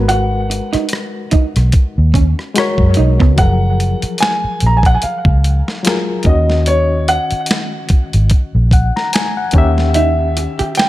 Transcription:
0.00 0.59 G#1 medium
0.00 1.19 G#3 medium
0.00 1.20 F#4 medium
0.00 1.20 A#4 medium
0.00 1.21 B4 medium
0.08 0.26 F#4 medium
0.08 2.51 F#5 medium
0.08 closed hi-hat medium
0.50 muted hollow-body jazz guitar stroke soft
0.50 closed hi-hat medium
0.73 0.86 D#4 medium
0.73 muted fingered electric bass stroke soft
0.73 cross-stick soft
0.73 closed hi-hat soft
0.89 closed hi-hat medium
0.93 cross-stick medium
1.31 1.48 D#4 medium
1.31 muted fingered electric bass stroke soft
1.31 kick medium
1.31 closed hi-hat medium
1.56 1.72 B1 medium
1.56 cross-stick soft
1.56 closed hi-hat soft
1.72 kick medium
1.72 closed hi-hat medium
1.98 2.33 D#2 medium
2.14 2.30 C#4 medium
2.14 kick medium
2.14 closed hi-hat medium
2.39 cross-stick soft
2.54 3.31 G#3 medium
2.54 3.32 F#4 medium
2.54 3.32 A#4 medium
2.54 muted hollow-body jazz guitar stroke soft
2.54 cross-stick loud
2.54 closed hi-hat medium
2.59 3.33 C#5 medium
2.78 2.94 F#2 medium
2.78 kick medium
2.94 3.13 D#4 medium
2.94 closed hi-hat medium
2.98 3.21 B1 medium
3.20 3.36 C#2 medium
3.20 3.32 B3 medium
3.20 kick medium
3.20 cross-stick soft
3.36 3.94 F#1 medium
3.36 4.90 F3 medium
3.36 4.89 F#3 medium
3.36 4.91 G#4 medium
3.36 4.22 F#5 medium
3.36 kick medium
3.36 closed hi-hat medium
3.41 4.91 A#4 medium
3.80 closed hi-hat medium
4.02 muted fingered electric bass stroke soft
4.02 closed hi-hat soft
4.18 4.68 G#5 loud
4.18 closed hi-hat medium
4.23 finger snap medium
4.23 snare medium
4.44 muted fingered electric bass stroke soft
4.60 4.97 A#1 medium
4.60 closed hi-hat medium
4.66 4.76 A#5 medium
4.77 4.86 G#5 medium
4.83 4.94 F#5 medium
4.83 kick medium
4.83 closed hi-hat soft
4.95 5.02 G#5 medium
5.02 5.81 F5 medium
5.02 muted fingered electric bass stroke soft
5.02 closed hi-hat medium
5.25 5.61 C#2 medium
5.25 kick medium
5.44 closed hi-hat medium
5.68 snare soft
5.83 6.24 F#3 medium
5.83 6.25 F4 medium
5.83 6.26 G#4 medium
5.83 closed hi-hat medium
5.87 6.27 A#4 medium
5.87 finger snap medium
5.87 snare loud
6.23 7.17 D#2 medium
6.23 7.77 D#3 medium
6.23 7.77 C#4 medium
6.23 6.64 D#5 medium
6.23 kick medium
6.23 closed hi-hat medium
6.27 7.78 F#4 medium
6.27 7.79 D#5 medium
6.50 snare soft
6.66 7.09 C#5 medium
6.66 closed hi-hat medium
7.08 8.27 F#5 medium
7.08 closed hi-hat medium
7.31 muted fingered electric bass stroke soft
7.31 closed hi-hat soft
7.46 closed hi-hat medium
7.51 finger snap medium
7.51 snare medium
7.89 muted fingered electric bass stroke soft
7.89 kick medium
7.89 closed hi-hat medium
8.13 8.29 G#1 medium
8.13 closed hi-hat soft
8.30 muted fingered electric bass stroke soft
8.30 kick medium
8.30 closed hi-hat medium
8.55 8.90 A#1 medium
8.71 8.94 F#5 medium
8.71 kick medium
8.71 closed hi-hat medium
8.96 9.13 A#5 medium
8.96 snare soft
9.13 9.35 G#5 medium
9.13 finger snap medium
9.13 snare loud
9.13 closed hi-hat medium
9.37 9.75 F#5 medium
9.51 10.46 D#2 medium
9.51 10.89 D#3 medium
9.51 10.89 C#4 medium
9.51 kick medium
9.51 closed hi-hat medium
9.56 10.89 G4 medium
9.56 10.89 E5 medium
9.78 snare soft
9.94 10.12 D#4 medium
9.94 10.79 E5 medium
9.94 closed hi-hat medium
10.37 muted hollow-body jazz guitar stroke soft
10.37 closed hi-hat medium
10.59 10.72 G4 medium
10.59 muted fingered electric bass stroke soft
10.59 closed hi-hat soft
10.75 10.89 G5 medium
10.75 closed hi-hat medium
10.79 finger snap medium
10.79 snare medium

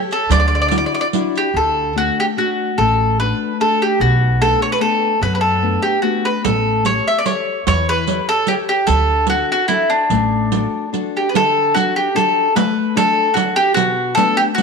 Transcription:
0.00 0.21 G4 soft
0.00 0.21 A4 medium
0.00 0.21 C#5 medium
0.11 0.31 A4 medium
0.11 riq soft
0.29 0.84 D2 medium
0.29 0.69 D3 medium
0.29 0.38 D5 loud
0.29 riq medium
0.40 0.46 D5 medium
0.48 0.54 D5 medium
0.55 0.60 D5 medium
0.62 0.67 D5 medium
0.68 1.05 D4 soft
0.68 1.05 E4 soft
0.68 1.05 F#4 medium
0.68 0.75 D5 medium
0.68 riq medium
0.78 0.84 D5 medium
0.86 0.92 D5 medium
0.94 1.00 D5 medium
1.01 1.06 D5 medium
1.13 1.48 D4 medium
1.13 1.48 E4 medium
1.13 1.48 F#4 medium
1.13 riq medium
1.35 1.57 G4 medium
1.35 riq soft
1.54 2.08 D2 medium
1.54 1.95 D3 medium
1.54 1.94 A4 medium
1.96 2.29 A3 soft
1.96 2.29 D4 soft
1.96 2.29 F#4 soft
1.96 2.19 F#4 medium
2.20 2.25 G4 medium
2.37 2.70 A3 medium
2.37 2.70 D4 soft
2.37 2.70 F#4 medium
2.37 2.76 F#4 medium
2.78 3.31 A1 medium
2.78 3.18 A3 medium
2.78 3.19 A4 medium
3.20 3.52 A3 soft
3.20 3.52 D4 soft
3.20 3.52 F#4 soft
3.20 3.57 B4 medium
3.60 3.92 A3 medium
3.60 3.92 D4 soft
3.60 3.93 F#4 medium
3.60 3.82 A4 medium
3.82 3.99 G4 medium
4.00 4.53 B1 medium
4.00 4.39 B2 medium
4.00 4.42 F#4 medium
4.41 4.73 A3 soft
4.41 4.73 B3 soft
4.41 4.73 D4 soft
4.41 4.61 A4 loud
4.62 4.71 C#5 medium
4.72 4.81 B4 medium
4.80 5.13 A3 medium
4.80 5.13 B3 soft
4.80 5.13 D4 soft
4.80 5.19 A4 medium
5.21 5.75 F#2 medium
5.21 5.61 F#3 medium
5.21 5.34 B4 medium
5.35 5.40 B4 medium
5.41 5.80 A4 medium
5.62 5.96 A3 soft
5.62 5.96 B3 soft
5.62 5.96 D4 soft
5.82 6.02 G4 medium
6.02 6.36 A3 soft
6.02 6.37 B3 soft
6.02 6.37 D4 medium
6.02 6.25 F#4 medium
6.25 6.44 B4 medium
6.45 6.98 A1 medium
6.45 6.85 A3 soft
6.45 6.85 A4 medium
6.45 riq medium
6.85 7.18 G4 soft
6.85 7.18 A4 soft
6.85 7.18 C#5 soft
6.85 7.08 C#5 medium
6.85 riq medium
7.08 7.16 E5 medium
7.18 7.26 D5 medium
7.26 7.58 G4 medium
7.26 7.59 A4 soft
7.26 7.64 C#5 medium
7.26 7.59 C#5 medium
7.26 riq medium
7.67 8.19 E2 medium
7.67 8.06 E3 medium
7.67 7.87 C#5 loud
7.67 riq medium
7.89 8.26 B4 loud
8.07 8.40 G4 soft
8.07 8.40 A4 soft
8.07 8.40 C#5 soft
8.07 riq medium
8.29 8.46 A4 loud
8.47 8.80 G4 medium
8.47 8.54 G4 medium
8.47 8.80 A4 soft
8.47 8.80 C#5 medium
8.47 riq medium
8.69 8.88 G4 medium
8.87 9.41 D2 medium
8.87 9.27 D3 medium
8.87 9.25 A4 loud
8.87 riq medium
9.27 9.61 D4 soft
9.27 9.61 F#4 soft
9.27 9.49 F#4 medium
9.27 9.61 A4 soft
9.27 riq medium
9.52 9.68 F#4 medium
9.68 10.03 D4 soft
9.68 9.88 E4 medium
9.68 10.02 F#4 medium
9.68 10.03 A4 medium
9.68 riq medium
9.90 10.89 D4 medium
10.10 10.64 A1 medium
10.10 10.51 A3 medium
10.10 riq medium
10.52 10.85 D4 soft
10.52 10.85 F#4 soft
10.52 10.86 A4 soft
10.52 riq medium
10.93 11.26 D4 soft
10.93 11.27 F#4 soft
10.93 11.27 A4 medium
10.93 riq soft
11.17 11.28 G4 medium
11.29 11.35 B4 soft
11.34 11.74 D3 medium
11.34 11.74 A4 medium
11.34 riq medium
11.75 12.08 D4 soft
11.75 11.96 F#4 medium
11.75 12.08 F#4 soft
11.75 12.08 A4 soft
11.75 riq medium
11.96 12.14 G4 medium
12.15 12.47 D4 medium
12.15 12.48 F#4 soft
12.15 12.56 A4 medium
12.15 12.48 A4 medium
12.15 riq medium
12.55 12.95 A3 medium
12.55 12.94 B4 medium
12.55 riq medium
12.96 13.28 D4 soft
12.96 13.28 F#4 soft
12.96 13.28 A4 soft
12.96 13.34 A4 loud
12.96 riq medium
13.34 13.68 D4 medium
13.34 13.55 F#4 medium
13.34 13.67 F#4 soft
13.34 13.68 A4 medium
13.34 riq medium
13.56 13.74 G4 loud
13.74 14.15 B2 medium
13.74 14.13 F#4 loud
13.74 riq medium
14.15 14.49 A3 soft
14.15 14.49 B3 soft
14.15 14.50 D4 medium
14.15 14.38 A4 loud
14.15 riq medium
14.37 14.42 G4 loud
14.55 14.62 A3 medium
14.55 14.62 F#4 medium
14.55 riq medium
14.59 14.62 B3 medium
14.59 14.62 D4 medium

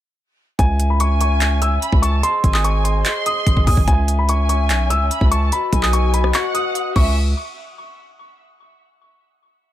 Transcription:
0.59 1.78 C#2 loud
0.59 2.22 C#4 medium
0.59 2.22 C#5 medium
0.59 2.22 E5 medium
0.59 2.22 G#5 medium
0.59 0.88 G#5 loud
0.59 kick loud
0.59 closed hi-hat medium
0.80 closed hi-hat medium
0.90 0.99 B5 medium
1.00 1.78 G#5 loud
1.00 1.18 C#6 medium
1.00 closed hi-hat medium
1.21 1.59 C#6 medium
1.21 closed hi-hat medium
1.41 clap loud
1.41 closed hi-hat medium
1.62 2.00 E6 medium
1.62 closed hi-hat medium
1.82 2.02 B5 medium
1.82 closed hi-hat medium
1.92 2.22 C#2 loud
1.92 kick medium
2.02 2.22 A5 medium
2.02 2.21 C#6 medium
2.02 closed hi-hat medium
2.23 3.86 G#4 medium
2.23 3.86 C5 medium
2.23 3.86 D#5 medium
2.23 2.52 C6 loud
2.23 closed hi-hat medium
2.44 3.03 G#1 loud
2.44 3.02 G#5 medium
2.44 kick loud
2.44 closed hi-hat medium
2.54 2.63 D#6 medium
2.54 clap loud
2.64 2.83 C#6 medium
2.64 closed hi-hat medium
2.84 3.23 C6 medium
2.84 closed hi-hat medium
3.05 3.63 C6 medium
3.05 clap loud
3.05 closed hi-hat medium
3.26 3.65 D#6 medium
3.26 closed hi-hat medium
3.47 3.56 G#1 loud
3.47 kick medium
3.47 closed hi-hat medium
3.57 3.67 G#1 loud
3.57 kick medium
3.67 3.77 D#2 loud
3.67 3.87 G#5 medium
3.67 3.85 D#6 medium
3.67 kick medium
3.67 open hi-hat medium
3.77 3.87 G#1 loud
3.77 kick loud
3.88 4.71 C#2 loud
3.88 5.50 C#4 medium
3.88 5.50 C#5 medium
3.88 5.50 E5 medium
3.88 4.17 G#5 loud
3.88 5.50 G#5 medium
3.88 kick loud
3.88 closed hi-hat medium
4.08 closed hi-hat medium
4.19 4.28 B5 medium
4.29 5.07 G#5 loud
4.29 4.47 C#6 medium
4.29 closed hi-hat medium
4.49 4.88 C#6 medium
4.49 closed hi-hat medium
4.70 4.92 B1 loud
4.70 clap loud
4.70 closed hi-hat medium
4.90 5.10 C#2 loud
4.90 5.29 E6 medium
4.90 closed hi-hat medium
5.11 5.31 B5 medium
5.11 closed hi-hat medium
5.21 5.51 C#2 loud
5.21 kick medium
5.31 5.51 A5 medium
5.31 5.50 C#6 medium
5.31 closed hi-hat medium
5.52 6.95 F#4 medium
5.52 6.95 B4 medium
5.52 6.95 D#5 medium
5.52 5.81 B5 medium
5.52 closed hi-hat medium
5.73 6.32 B1 loud
5.73 6.31 G#5 medium
5.73 kick loud
5.73 closed hi-hat medium
5.83 5.92 D#6 medium
5.83 clap loud
5.93 6.11 C#6 medium
5.93 closed hi-hat medium
6.14 6.32 B5 medium
6.14 closed hi-hat medium
6.24 cross-stick medium
6.34 6.92 F#5 medium
6.34 6.53 C#6 medium
6.34 clap loud
6.34 closed hi-hat medium
6.54 6.93 D#6 medium
6.54 closed hi-hat medium
6.75 closed hi-hat medium
6.96 7.34 C#2 loud
6.96 7.15 C#4 medium
6.96 7.15 C#5 medium
6.96 7.15 E5 medium
6.96 7.15 G#5 medium
6.96 7.15 C#6 medium
6.96 kick loud
6.96 crash medium

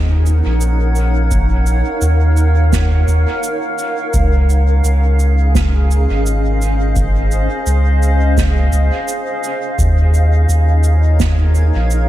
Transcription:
0.00 0.42 D#2 medium
0.00 0.77 C#4 medium
0.00 6.06 D#4 medium
0.00 5.39 A#4 medium
0.00 4.13 C#5 medium
0.00 4.13 F#5 medium
0.26 cabasa soft
0.35 12.09 F5 medium
0.46 1.83 A#1 medium
0.61 cabasa medium
0.95 cabasa medium
1.31 kick loud
1.31 cabasa medium
1.66 cabasa soft
2.01 3.05 D#2 loud
2.01 cabasa medium
2.37 cabasa soft
2.73 kick loud
2.73 snare medium
2.73 cabasa medium
3.08 3.26 D#2 medium
3.08 cabasa soft
3.43 cabasa medium
3.78 cabasa medium
4.13 4.82 C#2 loud
4.13 11.80 C#4 medium
4.13 kick loud
4.13 cabasa medium
4.37 11.82 G#4 medium
4.50 cabasa soft
4.84 6.07 C#2 medium
4.84 cabasa medium
5.19 cabasa soft
5.45 11.10 D#5 medium
5.54 9.78 C5 medium
5.54 kick loud
5.54 snare medium
5.54 cabasa medium
5.91 cabasa soft
6.10 7.48 G#1 loud
6.26 cabasa medium
6.62 cabasa soft
6.96 kick loud
6.96 cabasa medium
7.31 cabasa soft
7.66 8.70 C#2 medium
7.66 cabasa medium
8.03 cabasa soft
8.37 kick loud
8.37 snare medium
8.37 cabasa medium
8.73 8.91 C#2 medium
8.73 cabasa soft
9.08 cabasa medium
9.44 cabasa medium
9.78 10.46 D#2 loud
9.78 12.09 D#4 medium
9.78 kick loud
9.78 cabasa medium
10.06 12.09 C#5 medium
10.14 cabasa medium
10.28 12.09 A#4 medium
10.49 11.71 D#2 loud
10.49 cabasa medium
10.84 cabasa soft
11.20 kick loud
11.20 snare medium
11.20 cabasa medium
11.55 cabasa soft
11.75 12.09 A#1 medium
11.90 cabasa medium

